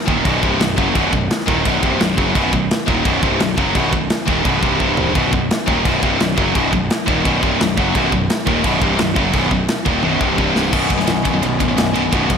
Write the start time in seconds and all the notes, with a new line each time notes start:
0.00 snare
0.06 D#1 D#2 A#2 D#3, kick
0.24 B0 B1 F#2 B2, kick, crash
0.43 C1 C2 G2 C3, kick
0.59 B0 B1 F#2, snare, crash
0.77 F#1 F#2 C#3 F#3, kick
0.94 B0 B1 F#2 B2, kick, crash
1.12 B0 B1 F#2, kick
1.30 snare, crash
1.40 snare
1.46 D#1 D#2 A#2 D#3, kick
1.64 B0 B1 F#2 B2, kick, crash
1.82 C1 C2 G2 C3, kick
1.99 B0 B1 F#2, snare, crash
2.17 F#1 F#2 C#3 F#3, kick
2.34 B0 B1 F#2 B2, kick, crash
2.52 B0 B1 F#2, kick
2.71 snare, crash
2.86 D#1 D#2 A#2 D#3, kick
3.04 B0 B1 F#2 B2, kick, crash
3.22 C1 C2 G2 C3, kick
3.40 B0 B1 F#2, snare, crash
3.57 F#1 F#2 C#3 F#3, kick
3.74 B0 B1 F#2 B2, kick, crash
3.92 B0 B1 F#2, kick
4.10 snare, crash
4.26 D#1 D#2 A#2 D#3, kick
4.44 B0 B1 F#2 B2, kick, crash
4.61 C1 C2 G2 C3, kick
4.79 C1 C2 G2 C3, kick
4.97 floor tom
5.14 B0 B1 F#2 B2, kick, crash
5.32 B0 B1 F#2, kick
5.51 snare, crash
5.66 D#1 D#2 A#2 D#3, kick
5.84 B0 B1 F#2 B2, kick, crash
6.02 C1 C2 G2 C3, kick
6.20 B0 B1 F#2, snare, crash
6.36 F#1 F#2 C#3 F#3, kick
6.54 B0 B1 F#2 B2, kick, crash
6.71 B0 B1 F#2, kick
6.90 snare, crash
7.06 D#1 D#2 A#2 D#3, kick
7.24 B0 B1 F#2 B2, kick, crash
7.42 C1 C2 G2 C3, kick
7.59 B0 B1 F#2, snare, crash
7.78 F#1 F#2 C#3 F#3, kick
7.95 B0 B1 F#2 B2, kick, crash
8.12 B0 B1 F#2, kick
8.30 snare, crash
8.47 D#1 D#2 A#2 D#3, kick
8.64 B0 B1 F#2 B2, kick, crash
8.81 C1 C2 G2 C3, kick
8.98 B0 B1 F#2, snare, crash
9.15 F#1 F#2 C#3 F#3, kick
9.33 B0 B1 F#2 B2, kick, crash
9.51 B0 B1 F#2, kick
9.68 snare, crash
9.86 D#1 D#2 A#2 D#3, kick
10.03 B0 B1 F#2 B2, high tom
10.20 C1 C2 G2 C3, kick
10.37 C1 C2 G2 C3, kick
10.56 snare
10.72 B0 B1 F#2 B2, kick, crash
10.90 B0 B1 F#2, kick, ride
10.97 B1 F#2, snare
11.07 B0 B1 F#2, snare, ride
11.25 B0 B1 F#2, kick, ride
11.34 B1 F#2
11.42 B0 B1 F#2 B2, ride
11.60 A1 B1 F#2, kick, ride
11.68 B1 F#2
11.77 B0 B1 F#2, snare, ride
11.94 B0 B1 F#2 B2, ride
12.03 B1 F#2
12.12 B0 B1 F#2 B2, kick, ride
12.29 B0 B1 F#2, kick, ride